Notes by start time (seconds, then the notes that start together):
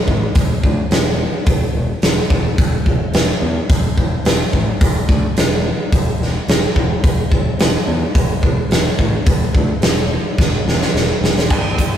0.08 A1, kick
0.35 E1, kick, open hi-hat
0.63 D2, kick
0.91 E1, snare, open hi-hat
1.46 E1, kick, open hi-hat
1.75 E1
2.02 E1, snare, open hi-hat
2.30 E1, kick
2.58 E1, kick, open hi-hat
2.86 E1, kick
3.14 E1, snare, open hi-hat
3.42 E2
3.70 E1, kick, open hi-hat
3.97 E1, kick
4.25 E1, snare, open hi-hat
4.53 A1, kick
4.81 E1, kick, open hi-hat
5.09 D2, kick
5.36 E1, snare, open hi-hat
5.92 E1, kick, open hi-hat
6.20 E1, snare
6.48 E1, snare, open hi-hat
6.76 E1, kick
7.04 E1, kick, open hi-hat
7.32 E1, kick
7.59 E1, snare, open hi-hat
7.87 E2
8.15 E1, kick, open hi-hat
8.43 E1, kick
8.70 E1, snare, open hi-hat
8.99 A1, kick
9.26 E1, kick, open hi-hat
9.55 D2, kick
9.82 E1, snare, open hi-hat
10.38 E1, kick, snare
10.65 E1, snare
10.82 snare
10.94 E1, snare
11.21 E1, snare
11.38 snare
11.50 G1, kick, crash
11.78 kick, closed hi-hat